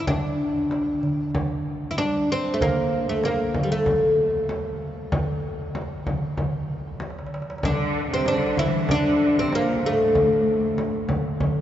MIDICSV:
0, 0, Header, 1, 5, 480
1, 0, Start_track
1, 0, Tempo, 629591
1, 61, Time_signature, 4, 2, 24, 8
1, 8853, End_track
2, 0, Start_track
2, 0, Title_t, "Oud"
2, 0, Program_c, 0, 24
2, 56, Note_on_c, 0, 62, 66
2, 990, Note_off_c, 0, 62, 0
2, 1455, Note_on_c, 0, 64, 63
2, 1506, Note_off_c, 0, 64, 0
2, 1509, Note_on_c, 0, 62, 97
2, 1754, Note_off_c, 0, 62, 0
2, 1768, Note_on_c, 0, 60, 86
2, 1935, Note_on_c, 0, 57, 65
2, 1948, Note_off_c, 0, 60, 0
2, 1986, Note_off_c, 0, 57, 0
2, 1998, Note_on_c, 0, 58, 78
2, 2355, Note_off_c, 0, 58, 0
2, 2358, Note_on_c, 0, 57, 67
2, 2475, Note_off_c, 0, 57, 0
2, 2478, Note_on_c, 0, 58, 77
2, 2758, Note_off_c, 0, 58, 0
2, 2770, Note_on_c, 0, 55, 52
2, 2824, Note_off_c, 0, 55, 0
2, 2834, Note_on_c, 0, 57, 74
2, 5319, Note_off_c, 0, 57, 0
2, 5833, Note_on_c, 0, 62, 76
2, 6163, Note_off_c, 0, 62, 0
2, 6203, Note_on_c, 0, 60, 75
2, 6305, Note_off_c, 0, 60, 0
2, 6312, Note_on_c, 0, 62, 83
2, 6546, Note_off_c, 0, 62, 0
2, 6549, Note_on_c, 0, 64, 93
2, 6769, Note_off_c, 0, 64, 0
2, 6794, Note_on_c, 0, 62, 89
2, 7157, Note_off_c, 0, 62, 0
2, 7160, Note_on_c, 0, 60, 79
2, 7274, Note_off_c, 0, 60, 0
2, 7282, Note_on_c, 0, 58, 84
2, 7516, Note_off_c, 0, 58, 0
2, 7519, Note_on_c, 0, 57, 68
2, 8197, Note_off_c, 0, 57, 0
2, 8853, End_track
3, 0, Start_track
3, 0, Title_t, "Cello section"
3, 0, Program_c, 1, 48
3, 5820, Note_on_c, 1, 50, 81
3, 6156, Note_off_c, 1, 50, 0
3, 6182, Note_on_c, 1, 48, 71
3, 6303, Note_off_c, 1, 48, 0
3, 6304, Note_on_c, 1, 50, 75
3, 6540, Note_on_c, 1, 52, 74
3, 6543, Note_off_c, 1, 50, 0
3, 6771, Note_on_c, 1, 50, 79
3, 6781, Note_off_c, 1, 52, 0
3, 7136, Note_off_c, 1, 50, 0
3, 7143, Note_on_c, 1, 48, 70
3, 7262, Note_off_c, 1, 48, 0
3, 7264, Note_on_c, 1, 46, 74
3, 7497, Note_on_c, 1, 45, 70
3, 7502, Note_off_c, 1, 46, 0
3, 8217, Note_off_c, 1, 45, 0
3, 8853, End_track
4, 0, Start_track
4, 0, Title_t, "Darbuka"
4, 66, Note_on_c, 9, 64, 90
4, 143, Note_off_c, 9, 64, 0
4, 551, Note_on_c, 9, 63, 75
4, 627, Note_off_c, 9, 63, 0
4, 785, Note_on_c, 9, 64, 80
4, 862, Note_off_c, 9, 64, 0
4, 1026, Note_on_c, 9, 64, 92
4, 1102, Note_off_c, 9, 64, 0
4, 1269, Note_on_c, 9, 62, 25
4, 1345, Note_off_c, 9, 62, 0
4, 1507, Note_on_c, 9, 63, 64
4, 1583, Note_off_c, 9, 63, 0
4, 1745, Note_on_c, 9, 62, 25
4, 1822, Note_off_c, 9, 62, 0
4, 1868, Note_on_c, 9, 62, 25
4, 1944, Note_off_c, 9, 62, 0
4, 1986, Note_on_c, 9, 64, 88
4, 2062, Note_off_c, 9, 64, 0
4, 2468, Note_on_c, 9, 63, 72
4, 2544, Note_off_c, 9, 63, 0
4, 2714, Note_on_c, 9, 64, 84
4, 2790, Note_off_c, 9, 64, 0
4, 2954, Note_on_c, 9, 64, 88
4, 3030, Note_off_c, 9, 64, 0
4, 3198, Note_on_c, 9, 62, 24
4, 3275, Note_off_c, 9, 62, 0
4, 3436, Note_on_c, 9, 63, 70
4, 3512, Note_off_c, 9, 63, 0
4, 3676, Note_on_c, 9, 62, 27
4, 3752, Note_off_c, 9, 62, 0
4, 3794, Note_on_c, 9, 62, 25
4, 3871, Note_off_c, 9, 62, 0
4, 3910, Note_on_c, 9, 64, 91
4, 3987, Note_off_c, 9, 64, 0
4, 4149, Note_on_c, 9, 62, 24
4, 4225, Note_off_c, 9, 62, 0
4, 4387, Note_on_c, 9, 63, 69
4, 4463, Note_off_c, 9, 63, 0
4, 4508, Note_on_c, 9, 62, 25
4, 4584, Note_off_c, 9, 62, 0
4, 4627, Note_on_c, 9, 64, 79
4, 4703, Note_off_c, 9, 64, 0
4, 4867, Note_on_c, 9, 64, 94
4, 4943, Note_off_c, 9, 64, 0
4, 4986, Note_on_c, 9, 62, 25
4, 5062, Note_off_c, 9, 62, 0
4, 5107, Note_on_c, 9, 62, 23
4, 5183, Note_off_c, 9, 62, 0
4, 5352, Note_on_c, 9, 63, 50
4, 5415, Note_on_c, 9, 62, 57
4, 5429, Note_off_c, 9, 63, 0
4, 5478, Note_on_c, 9, 63, 58
4, 5491, Note_off_c, 9, 62, 0
4, 5539, Note_on_c, 9, 62, 68
4, 5555, Note_off_c, 9, 63, 0
4, 5597, Note_on_c, 9, 63, 78
4, 5615, Note_off_c, 9, 62, 0
4, 5657, Note_on_c, 9, 62, 72
4, 5673, Note_off_c, 9, 63, 0
4, 5718, Note_on_c, 9, 63, 73
4, 5733, Note_off_c, 9, 62, 0
4, 5781, Note_on_c, 9, 62, 76
4, 5794, Note_off_c, 9, 63, 0
4, 5839, Note_on_c, 9, 64, 82
4, 5857, Note_off_c, 9, 62, 0
4, 5915, Note_off_c, 9, 64, 0
4, 6310, Note_on_c, 9, 63, 64
4, 6386, Note_off_c, 9, 63, 0
4, 6547, Note_on_c, 9, 64, 69
4, 6623, Note_off_c, 9, 64, 0
4, 6787, Note_on_c, 9, 64, 77
4, 6864, Note_off_c, 9, 64, 0
4, 7027, Note_on_c, 9, 62, 25
4, 7103, Note_off_c, 9, 62, 0
4, 7263, Note_on_c, 9, 63, 70
4, 7339, Note_off_c, 9, 63, 0
4, 7623, Note_on_c, 9, 62, 23
4, 7700, Note_off_c, 9, 62, 0
4, 7742, Note_on_c, 9, 64, 78
4, 7818, Note_off_c, 9, 64, 0
4, 8227, Note_on_c, 9, 63, 69
4, 8303, Note_off_c, 9, 63, 0
4, 8343, Note_on_c, 9, 62, 26
4, 8420, Note_off_c, 9, 62, 0
4, 8458, Note_on_c, 9, 64, 81
4, 8534, Note_off_c, 9, 64, 0
4, 8697, Note_on_c, 9, 64, 97
4, 8773, Note_off_c, 9, 64, 0
4, 8820, Note_on_c, 9, 62, 24
4, 8853, Note_off_c, 9, 62, 0
4, 8853, End_track
5, 0, Start_track
5, 0, Title_t, "Frame drum"
5, 56, Note_on_c, 9, 64, 94
5, 132, Note_off_c, 9, 64, 0
5, 541, Note_on_c, 9, 64, 55
5, 618, Note_off_c, 9, 64, 0
5, 1026, Note_on_c, 9, 64, 81
5, 1102, Note_off_c, 9, 64, 0
5, 1510, Note_on_c, 9, 64, 63
5, 1586, Note_off_c, 9, 64, 0
5, 1993, Note_on_c, 9, 64, 91
5, 2070, Note_off_c, 9, 64, 0
5, 2467, Note_on_c, 9, 64, 59
5, 2543, Note_off_c, 9, 64, 0
5, 2701, Note_on_c, 9, 64, 75
5, 2778, Note_off_c, 9, 64, 0
5, 2943, Note_on_c, 9, 64, 81
5, 3019, Note_off_c, 9, 64, 0
5, 3425, Note_on_c, 9, 64, 64
5, 3501, Note_off_c, 9, 64, 0
5, 3904, Note_on_c, 9, 64, 91
5, 3981, Note_off_c, 9, 64, 0
5, 4384, Note_on_c, 9, 64, 65
5, 4460, Note_off_c, 9, 64, 0
5, 4624, Note_on_c, 9, 64, 74
5, 4701, Note_off_c, 9, 64, 0
5, 4859, Note_on_c, 9, 64, 70
5, 4936, Note_off_c, 9, 64, 0
5, 5336, Note_on_c, 9, 64, 61
5, 5413, Note_off_c, 9, 64, 0
5, 5819, Note_on_c, 9, 64, 91
5, 5895, Note_off_c, 9, 64, 0
5, 6297, Note_on_c, 9, 64, 56
5, 6374, Note_off_c, 9, 64, 0
5, 6537, Note_on_c, 9, 64, 72
5, 6613, Note_off_c, 9, 64, 0
5, 6776, Note_on_c, 9, 64, 80
5, 6852, Note_off_c, 9, 64, 0
5, 7263, Note_on_c, 9, 64, 64
5, 7339, Note_off_c, 9, 64, 0
5, 7740, Note_on_c, 9, 64, 78
5, 7816, Note_off_c, 9, 64, 0
5, 8219, Note_on_c, 9, 64, 63
5, 8295, Note_off_c, 9, 64, 0
5, 8452, Note_on_c, 9, 64, 76
5, 8528, Note_off_c, 9, 64, 0
5, 8695, Note_on_c, 9, 64, 78
5, 8771, Note_off_c, 9, 64, 0
5, 8853, End_track
0, 0, End_of_file